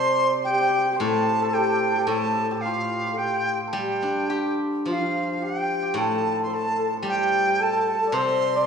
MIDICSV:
0, 0, Header, 1, 5, 480
1, 0, Start_track
1, 0, Tempo, 541028
1, 421, Time_signature, 4, 2, 24, 8
1, 2346, Tempo, 556070
1, 4746, Tempo, 542986
1, 7611, End_track
2, 0, Start_track
2, 0, Title_t, "Dizi"
2, 0, Program_c, 0, 73
2, 0, Note_on_c, 0, 84, 102
2, 266, Note_off_c, 0, 84, 0
2, 388, Note_on_c, 0, 79, 92
2, 849, Note_off_c, 0, 79, 0
2, 884, Note_on_c, 0, 81, 89
2, 1360, Note_on_c, 0, 79, 90
2, 1373, Note_off_c, 0, 81, 0
2, 1833, Note_on_c, 0, 81, 102
2, 1846, Note_off_c, 0, 79, 0
2, 2312, Note_on_c, 0, 77, 86
2, 2325, Note_off_c, 0, 81, 0
2, 2802, Note_on_c, 0, 79, 88
2, 2814, Note_off_c, 0, 77, 0
2, 3167, Note_off_c, 0, 79, 0
2, 3277, Note_on_c, 0, 79, 73
2, 3982, Note_off_c, 0, 79, 0
2, 4295, Note_on_c, 0, 77, 74
2, 4759, Note_on_c, 0, 79, 83
2, 4772, Note_off_c, 0, 77, 0
2, 5248, Note_on_c, 0, 81, 87
2, 5262, Note_off_c, 0, 79, 0
2, 5621, Note_off_c, 0, 81, 0
2, 5627, Note_on_c, 0, 84, 75
2, 5732, Note_on_c, 0, 81, 90
2, 5745, Note_off_c, 0, 84, 0
2, 6082, Note_off_c, 0, 81, 0
2, 6215, Note_on_c, 0, 79, 100
2, 6691, Note_on_c, 0, 81, 85
2, 6705, Note_off_c, 0, 79, 0
2, 7152, Note_on_c, 0, 84, 99
2, 7165, Note_off_c, 0, 81, 0
2, 7611, Note_off_c, 0, 84, 0
2, 7611, End_track
3, 0, Start_track
3, 0, Title_t, "Hammered dulcimer"
3, 0, Program_c, 1, 15
3, 0, Note_on_c, 1, 67, 80
3, 0, Note_on_c, 1, 69, 78
3, 0, Note_on_c, 1, 72, 92
3, 0, Note_on_c, 1, 74, 89
3, 398, Note_off_c, 1, 67, 0
3, 401, Note_on_c, 1, 67, 83
3, 472, Note_off_c, 1, 67, 0
3, 475, Note_on_c, 1, 67, 60
3, 532, Note_off_c, 1, 67, 0
3, 535, Note_on_c, 1, 67, 67
3, 616, Note_off_c, 1, 67, 0
3, 620, Note_on_c, 1, 67, 51
3, 689, Note_off_c, 1, 67, 0
3, 693, Note_on_c, 1, 67, 68
3, 756, Note_off_c, 1, 67, 0
3, 759, Note_on_c, 1, 67, 62
3, 820, Note_off_c, 1, 67, 0
3, 823, Note_on_c, 1, 67, 75
3, 850, Note_off_c, 1, 72, 0
3, 854, Note_on_c, 1, 72, 63
3, 894, Note_off_c, 1, 69, 0
3, 897, Note_on_c, 1, 69, 81
3, 1257, Note_off_c, 1, 69, 0
3, 1260, Note_on_c, 1, 69, 86
3, 1371, Note_off_c, 1, 67, 0
3, 1375, Note_on_c, 1, 67, 88
3, 1697, Note_off_c, 1, 69, 0
3, 1701, Note_on_c, 1, 69, 61
3, 1734, Note_off_c, 1, 67, 0
3, 1738, Note_on_c, 1, 67, 84
3, 1845, Note_off_c, 1, 69, 0
3, 1848, Note_on_c, 1, 69, 83
3, 2016, Note_off_c, 1, 74, 0
3, 2223, Note_off_c, 1, 67, 0
3, 2227, Note_on_c, 1, 67, 83
3, 2355, Note_on_c, 1, 65, 78
3, 2708, Note_off_c, 1, 65, 0
3, 2712, Note_on_c, 1, 65, 68
3, 2809, Note_off_c, 1, 67, 0
3, 2813, Note_on_c, 1, 67, 72
3, 3175, Note_off_c, 1, 72, 0
3, 3232, Note_off_c, 1, 69, 0
3, 3236, Note_on_c, 1, 69, 55
3, 3278, Note_off_c, 1, 67, 0
3, 3281, Note_on_c, 1, 67, 74
3, 3770, Note_off_c, 1, 67, 0
3, 3774, Note_on_c, 1, 67, 55
3, 4269, Note_off_c, 1, 65, 0
3, 4273, Note_on_c, 1, 65, 75
3, 4739, Note_off_c, 1, 67, 0
3, 4742, Note_on_c, 1, 67, 62
3, 5096, Note_off_c, 1, 67, 0
3, 5099, Note_on_c, 1, 67, 71
3, 5228, Note_off_c, 1, 69, 0
3, 5232, Note_on_c, 1, 69, 83
3, 5662, Note_on_c, 1, 72, 58
3, 5691, Note_off_c, 1, 69, 0
3, 5694, Note_on_c, 1, 69, 73
3, 6108, Note_off_c, 1, 69, 0
3, 6112, Note_on_c, 1, 69, 64
3, 6175, Note_off_c, 1, 67, 0
3, 6178, Note_on_c, 1, 67, 84
3, 6658, Note_off_c, 1, 69, 0
3, 6662, Note_on_c, 1, 69, 81
3, 6719, Note_off_c, 1, 69, 0
3, 6723, Note_on_c, 1, 69, 56
3, 6780, Note_off_c, 1, 69, 0
3, 6783, Note_on_c, 1, 69, 69
3, 6832, Note_off_c, 1, 69, 0
3, 6836, Note_on_c, 1, 69, 60
3, 6906, Note_off_c, 1, 69, 0
3, 6910, Note_on_c, 1, 69, 60
3, 6972, Note_off_c, 1, 69, 0
3, 6976, Note_on_c, 1, 69, 59
3, 7046, Note_off_c, 1, 69, 0
3, 7049, Note_on_c, 1, 69, 63
3, 7084, Note_on_c, 1, 74, 64
3, 7136, Note_off_c, 1, 72, 0
3, 7140, Note_on_c, 1, 72, 94
3, 7241, Note_off_c, 1, 65, 0
3, 7512, Note_off_c, 1, 74, 0
3, 7516, Note_on_c, 1, 74, 89
3, 7611, Note_off_c, 1, 67, 0
3, 7611, Note_off_c, 1, 69, 0
3, 7611, Note_off_c, 1, 72, 0
3, 7611, Note_off_c, 1, 74, 0
3, 7611, End_track
4, 0, Start_track
4, 0, Title_t, "Xiao"
4, 0, Program_c, 2, 77
4, 0, Note_on_c, 2, 72, 87
4, 281, Note_off_c, 2, 72, 0
4, 449, Note_on_c, 2, 67, 93
4, 770, Note_off_c, 2, 67, 0
4, 804, Note_on_c, 2, 67, 77
4, 905, Note_off_c, 2, 67, 0
4, 924, Note_on_c, 2, 69, 88
4, 1361, Note_off_c, 2, 69, 0
4, 1383, Note_on_c, 2, 67, 85
4, 1717, Note_off_c, 2, 67, 0
4, 1750, Note_on_c, 2, 67, 69
4, 1848, Note_on_c, 2, 69, 84
4, 1861, Note_off_c, 2, 67, 0
4, 2121, Note_off_c, 2, 69, 0
4, 2345, Note_on_c, 2, 65, 82
4, 2677, Note_off_c, 2, 65, 0
4, 2759, Note_on_c, 2, 69, 53
4, 2824, Note_on_c, 2, 67, 73
4, 2836, Note_off_c, 2, 69, 0
4, 3178, Note_off_c, 2, 67, 0
4, 3326, Note_on_c, 2, 67, 69
4, 3763, Note_off_c, 2, 67, 0
4, 3788, Note_on_c, 2, 67, 62
4, 4012, Note_off_c, 2, 67, 0
4, 4271, Note_on_c, 2, 65, 75
4, 4331, Note_on_c, 2, 62, 57
4, 4344, Note_off_c, 2, 65, 0
4, 4396, Note_on_c, 2, 65, 64
4, 4408, Note_off_c, 2, 62, 0
4, 4741, Note_off_c, 2, 65, 0
4, 4746, Note_on_c, 2, 67, 68
4, 5241, Note_on_c, 2, 69, 79
4, 5254, Note_off_c, 2, 67, 0
4, 5710, Note_off_c, 2, 69, 0
4, 5716, Note_on_c, 2, 69, 80
4, 6049, Note_off_c, 2, 69, 0
4, 6204, Note_on_c, 2, 67, 86
4, 6681, Note_on_c, 2, 69, 88
4, 6694, Note_off_c, 2, 67, 0
4, 7015, Note_off_c, 2, 69, 0
4, 7020, Note_on_c, 2, 69, 84
4, 7170, Note_on_c, 2, 72, 97
4, 7183, Note_off_c, 2, 69, 0
4, 7527, Note_on_c, 2, 74, 84
4, 7540, Note_off_c, 2, 72, 0
4, 7611, Note_off_c, 2, 74, 0
4, 7611, End_track
5, 0, Start_track
5, 0, Title_t, "Guzheng"
5, 0, Program_c, 3, 107
5, 0, Note_on_c, 3, 48, 64
5, 887, Note_on_c, 3, 45, 68
5, 890, Note_off_c, 3, 48, 0
5, 1824, Note_off_c, 3, 45, 0
5, 1835, Note_on_c, 3, 45, 65
5, 3281, Note_on_c, 3, 55, 60
5, 3283, Note_off_c, 3, 45, 0
5, 3538, Note_on_c, 3, 62, 44
5, 3773, Note_on_c, 3, 67, 45
5, 4255, Note_on_c, 3, 53, 49
5, 4507, Note_off_c, 3, 62, 0
5, 4737, Note_off_c, 3, 55, 0
5, 4741, Note_off_c, 3, 67, 0
5, 5200, Note_on_c, 3, 45, 60
5, 5703, Note_off_c, 3, 53, 0
5, 6161, Note_on_c, 3, 55, 56
5, 6657, Note_off_c, 3, 45, 0
5, 7131, Note_on_c, 3, 48, 70
5, 7610, Note_off_c, 3, 55, 0
5, 7611, Note_off_c, 3, 48, 0
5, 7611, End_track
0, 0, End_of_file